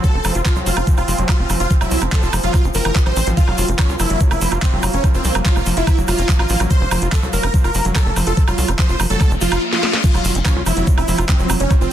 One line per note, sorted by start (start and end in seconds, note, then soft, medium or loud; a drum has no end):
0.00 9.62 F3 medium
0.00 0.16 F#3 medium
0.00 3.39 C4 medium
0.00 0.32 A4 loud
0.00 kick loud
0.00 closed hi-hat medium
0.00 shaker medium
0.14 0.21 F1 medium
0.14 0.18 F4 loud
0.24 0.31 F1 loud
0.24 0.34 F3 loud
0.24 open hi-hat loud
0.24 high woodblock medium
0.24 shaker medium
0.35 0.42 F1 medium
0.35 0.42 F4 medium
0.35 closed hi-hat medium
0.35 shaker soft
0.46 0.52 F3 loud
0.46 0.60 F4 medium
0.46 kick loud
0.46 clap loud
0.46 closed hi-hat medium
0.46 high woodblock soft
0.46 shaker medium
0.56 0.63 C2 medium
0.56 0.78 F#3 medium
0.56 shaker soft
0.66 0.73 F1 loud
0.66 0.87 F4 loud
0.66 open hi-hat loud
0.66 shaker loud
0.77 0.83 F1 medium
0.77 0.81 F4 loud
0.77 closed hi-hat medium
0.77 high woodblock medium
0.77 shaker soft
0.87 0.97 F3 loud
0.87 kick loud
0.87 closed hi-hat medium
0.87 shaker medium
0.97 1.04 F1 medium
0.97 1.19 F4 loud
0.97 1.04 F4 medium
0.97 high woodblock soft
0.97 shaker soft
1.08 1.15 F1 loud
1.08 1.15 F3 loud
1.08 open hi-hat loud
1.08 shaker loud
1.18 1.25 F1 medium
1.18 1.41 F#3 medium
1.18 closed hi-hat medium
1.29 1.50 F4 medium
1.29 kick loud
1.29 clap loud
1.29 closed hi-hat medium
1.29 high woodblock medium
1.29 shaker soft
1.39 1.46 F1 medium
1.39 1.43 F4 loud
1.50 1.56 F1 loud
1.50 1.59 F3 loud
1.50 open hi-hat loud
1.50 high woodblock soft
1.50 shaker loud
1.60 1.67 F1 medium
1.60 1.74 F4 medium
1.60 1.67 F4 medium
1.60 closed hi-hat medium
1.60 shaker soft
1.70 1.77 F3 loud
1.70 kick loud
1.70 closed hi-hat medium
1.70 shaker medium
1.81 1.88 F1 medium
1.81 2.03 F#3 medium
1.81 2.02 E4 medium
1.81 high woodblock medium
1.81 shaker soft
1.91 1.98 C2 loud
1.91 open hi-hat loud
1.91 shaker loud
2.01 2.08 F1 medium
2.01 2.06 F4 loud
2.01 closed hi-hat medium
2.01 high woodblock soft
2.01 shaker soft
2.12 2.22 F3 loud
2.12 2.33 A4 loud
2.12 kick loud
2.12 clap loud
2.12 closed hi-hat medium
2.12 shaker medium
2.23 2.29 F1 medium
2.23 2.29 F4 medium
2.23 shaker soft
2.33 2.40 F1 loud
2.33 2.40 F3 loud
2.33 open hi-hat loud
2.33 high woodblock medium
2.33 shaker loud
2.43 2.50 F1 medium
2.43 2.66 F#3 medium
2.43 2.65 F4 loud
2.43 closed hi-hat medium
2.43 shaker soft
2.54 kick loud
2.54 clap soft
2.54 closed hi-hat medium
2.54 high woodblock soft
2.54 shaker medium
2.64 2.71 F1 medium
2.64 2.68 F4 loud
2.64 shaker soft
2.74 2.81 F1 loud
2.74 2.79 F3 medium
2.74 2.96 A#4 medium
2.74 open hi-hat loud
2.74 shaker medium
2.85 2.92 F1 medium
2.85 2.92 E3 medium
2.85 closed hi-hat medium
2.85 high woodblock medium
2.85 shaker soft
2.96 2.99 F4 medium
2.96 kick loud
2.96 clap loud
2.96 closed hi-hat medium
2.96 shaker soft
3.06 3.13 A1 medium
3.06 3.12 F3 medium
3.06 3.27 C5 loud
3.06 high woodblock soft
3.16 3.23 A1 loud
3.16 3.20 E3 medium
3.16 open hi-hat loud
3.16 shaker loud
3.27 3.33 A1 medium
3.27 3.37 F3 loud
3.27 closed hi-hat medium
3.27 shaker soft
3.37 3.44 F3 loud
3.37 9.64 A#3 medium
3.37 3.65 F4 loud
3.37 kick loud
3.37 closed hi-hat medium
3.37 shaker medium
3.48 3.54 F1 medium
3.48 3.70 F#3 medium
3.48 high woodblock soft
3.58 3.65 F1 loud
3.58 open hi-hat loud
3.58 shaker medium
3.68 3.75 F1 medium
3.68 3.72 F4 loud
3.68 closed hi-hat medium
3.68 shaker soft
3.79 3.89 F3 loud
3.79 3.93 C#4 medium
3.79 kick loud
3.79 clap loud
3.79 closed hi-hat medium
3.79 high woodblock medium
3.79 shaker soft
3.89 3.96 C2 medium
3.89 3.96 F4 medium
3.89 shaker soft
3.99 4.06 F1 loud
3.99 4.06 F3 loud
3.99 4.21 E4 loud
3.99 open hi-hat loud
3.99 high woodblock soft
3.99 shaker medium
4.09 4.17 F1 medium
4.09 4.32 F#3 medium
4.09 closed hi-hat medium
4.09 shaker soft
4.20 kick loud
4.20 closed hi-hat medium
4.20 shaker soft
4.31 4.38 F1 medium
4.31 4.52 E4 loud
4.31 4.35 F4 loud
4.31 high woodblock medium
4.31 shaker soft
4.41 4.48 F1 loud
4.41 4.51 F3 loud
4.41 open hi-hat loud
4.41 shaker medium
4.52 4.58 F1 medium
4.52 4.58 F4 medium
4.52 closed hi-hat medium
4.52 high woodblock soft
4.52 shaker soft
4.62 4.69 F3 loud
4.62 4.83 C4 loud
4.62 kick loud
4.62 clap loud
4.62 closed hi-hat medium
4.62 shaker soft
4.73 4.79 F1 medium
4.73 4.95 F#3 medium
4.83 4.90 F1 loud
4.83 open hi-hat loud
4.83 high woodblock medium
4.83 shaker loud
4.93 5.00 F1 medium
4.93 5.08 C#4 medium
4.93 4.97 F4 loud
4.93 closed hi-hat medium
4.93 shaker soft
5.04 5.14 F3 loud
5.04 kick loud
5.04 closed hi-hat medium
5.04 high woodblock soft
5.04 shaker medium
5.14 5.21 F1 medium
5.14 5.35 C4 loud
5.14 5.21 F4 medium
5.14 shaker soft
5.24 5.31 C2 loud
5.24 5.31 F3 loud
5.24 open hi-hat loud
5.24 shaker medium
5.34 5.42 F1 medium
5.34 5.57 F#3 medium
5.34 closed hi-hat medium
5.34 high woodblock medium
5.34 shaker soft
5.45 5.67 F4 loud
5.45 kick loud
5.45 clap loud
5.45 closed hi-hat medium
5.45 shaker soft
5.56 5.63 F1 medium
5.56 5.60 F4 loud
5.56 high woodblock soft
5.56 shaker soft
5.66 5.73 F1 loud
5.66 5.76 F3 loud
5.66 open hi-hat loud
5.66 shaker loud
5.77 5.83 F1 medium
5.77 5.98 E4 loud
5.77 5.83 F4 medium
5.77 closed hi-hat medium
5.77 shaker soft
5.87 5.94 F3 loud
5.87 kick loud
5.87 closed hi-hat medium
5.87 high woodblock medium
5.87 shaker medium
5.98 6.04 F1 medium
5.98 6.20 F#3 medium
5.98 shaker soft
6.08 6.15 F1 loud
6.08 6.29 F4 loud
6.08 open hi-hat loud
6.08 high woodblock soft
6.08 shaker medium
6.18 6.25 F1 medium
6.18 6.22 F4 loud
6.18 closed hi-hat medium
6.18 shaker soft
6.29 6.39 F3 loud
6.29 kick loud
6.29 clap loud
6.29 closed hi-hat medium
6.29 shaker soft
6.39 6.46 A1 medium
6.39 6.60 F4 loud
6.39 6.46 F4 medium
6.39 high woodblock medium
6.49 6.56 A1 loud
6.49 6.56 F3 loud
6.49 open hi-hat loud
6.49 shaker medium
6.60 6.67 A1 medium
6.60 6.82 F#3 medium
6.60 closed hi-hat medium
6.60 high woodblock soft
6.60 shaker soft
6.70 6.99 C5 loud
6.70 kick loud
6.70 closed hi-hat medium
6.70 shaker soft
6.81 6.88 F1 medium
6.81 6.85 F4 loud
6.91 6.98 F1 loud
6.91 7.01 F3 loud
6.91 open hi-hat loud
6.91 high woodblock medium
6.91 shaker medium
7.02 7.08 F1 medium
7.02 7.08 F4 medium
7.02 closed hi-hat medium
7.02 shaker soft
7.12 7.19 F3 loud
7.12 7.26 A4 medium
7.12 kick loud
7.12 clap loud
7.12 closed hi-hat medium
7.12 high woodblock soft
7.12 shaker medium
7.23 7.29 C2 medium
7.23 7.45 F#3 medium
7.23 shaker soft
7.33 7.40 F1 loud
7.33 7.54 A#4 loud
7.33 open hi-hat loud
7.33 shaker loud
7.43 7.50 F1 medium
7.43 7.47 F4 loud
7.43 closed hi-hat medium
7.43 high woodblock medium
7.43 shaker soft
7.54 7.64 F3 loud
7.54 kick loud
7.54 closed hi-hat medium
7.54 shaker medium
7.64 7.71 F1 medium
7.64 7.71 F4 medium
7.64 7.85 A#4 loud
7.64 high woodblock soft
7.64 shaker soft
7.74 7.81 F1 loud
7.74 7.81 F3 loud
7.74 open hi-hat loud
7.74 shaker medium
7.85 7.92 F1 medium
7.85 8.07 F#3 medium
7.85 closed hi-hat medium
7.85 shaker soft
7.95 8.17 A4 loud
7.95 kick loud
7.95 clap loud
7.95 closed hi-hat medium
7.95 high woodblock medium
7.95 shaker medium
8.06 8.13 F1 medium
8.06 8.10 F4 loud
8.16 8.23 F1 loud
8.16 8.26 F3 loud
8.16 open hi-hat loud
8.16 high woodblock soft
8.16 shaker medium
8.27 8.33 F1 medium
8.27 8.33 F4 medium
8.27 8.41 A4 medium
8.27 closed hi-hat medium
8.27 shaker soft
8.37 8.44 F3 loud
8.37 kick loud
8.37 closed hi-hat medium
8.37 shaker medium
8.48 8.54 F1 medium
8.48 8.70 F#3 medium
8.48 8.69 F4 medium
8.48 high woodblock medium
8.48 shaker soft
8.58 8.65 C2 loud
8.58 open hi-hat loud
8.58 shaker loud
8.68 8.75 F1 medium
8.68 8.72 F4 loud
8.68 closed hi-hat medium
8.68 high woodblock soft
8.68 shaker soft
8.79 8.89 F3 loud
8.79 9.00 C5 loud
8.79 kick loud
8.79 clap loud
8.79 closed hi-hat medium
8.79 shaker medium
8.89 8.96 F1 medium
8.89 8.96 F4 medium
8.89 shaker soft
9.00 9.06 F1 loud
9.00 9.06 F3 loud
9.00 open hi-hat loud
9.00 high woodblock medium
9.00 shaker medium
9.10 9.17 F1 medium
9.10 9.32 F#3 medium
9.10 9.31 A4 loud
9.10 closed hi-hat medium
9.10 shaker soft
9.20 kick loud
9.20 clap soft
9.20 closed hi-hat medium
9.20 reverse cymbal medium
9.20 high woodblock soft
9.20 shaker medium
9.31 9.38 F1 medium
9.31 9.35 F4 loud
9.31 shaker soft
9.41 9.48 F1 medium
9.41 9.51 F3 loud
9.41 9.62 F4 loud
9.41 open hi-hat loud
9.41 shaker medium
9.52 9.58 F1 medium
9.52 9.58 F4 medium
9.52 closed hi-hat medium
9.52 high woodblock medium
9.52 shaker soft
9.73 9.94 F4 loud
9.73 snare medium
9.83 snare medium
9.93 snare medium
10.04 10.10 F3 loud
10.04 11.93 F3 medium
10.04 11.93 C4 medium
10.04 11.93 F4 medium
10.04 10.32 F4 loud
10.04 kick loud
10.04 closed hi-hat medium
10.04 crash loud
10.04 impact medium
10.04 shaker medium
10.14 10.21 F1 medium
10.14 10.37 F#3 medium
10.14 high woodblock soft
10.14 shaker soft
10.25 10.31 F1 loud
10.25 open hi-hat loud
10.25 shaker medium
10.35 10.42 F1 medium
10.35 10.39 F4 loud
10.35 closed hi-hat medium
10.35 shaker soft
10.42 10.55 F3 loud
10.42 10.60 C#4 loud
10.42 11.93 C5 medium
10.42 kick loud
10.42 clap loud
10.42 closed hi-hat medium
10.42 high woodblock medium
10.42 shaker medium
10.56 10.63 C2 medium
10.56 10.62 F4 medium
10.66 10.73 F1 loud
10.66 10.73 F3 loud
10.66 10.87 E4 loud
10.66 open hi-hat loud
10.66 high woodblock soft
10.66 shaker medium
10.76 10.83 F1 medium
10.76 10.99 F#3 medium
10.76 closed hi-hat medium
10.76 shaker soft
10.87 kick loud
10.87 closed hi-hat medium
10.87 shaker medium
10.98 11.04 F1 medium
10.98 11.19 E4 loud
10.98 11.02 F4 loud
10.98 high woodblock medium
10.98 shaker soft
11.08 11.15 F1 loud
11.08 11.18 F3 loud
11.08 open hi-hat loud
11.08 shaker medium
11.18 11.25 F1 medium
11.18 11.25 F4 medium
11.18 11.93 F5 medium
11.18 closed hi-hat medium
11.18 high woodblock soft
11.18 shaker soft
11.29 11.35 F3 loud
11.29 11.50 C4 loud
11.29 kick loud
11.29 clap loud
11.29 closed hi-hat medium
11.29 shaker medium
11.39 11.46 F1 medium
11.39 11.62 F#3 medium
11.39 shaker soft
11.50 11.56 F1 loud
11.50 open hi-hat loud
11.50 high woodblock medium
11.50 shaker loud
11.60 11.67 F1 medium
11.60 11.74 C#4 medium
11.60 11.64 F4 loud
11.60 closed hi-hat medium
11.60 shaker soft
11.71 11.80 F3 loud
11.71 kick loud
11.71 closed hi-hat medium
11.71 high woodblock soft
11.71 shaker medium
11.81 11.88 F1 medium
11.81 11.93 C4 loud
11.81 11.87 F4 medium
11.81 shaker soft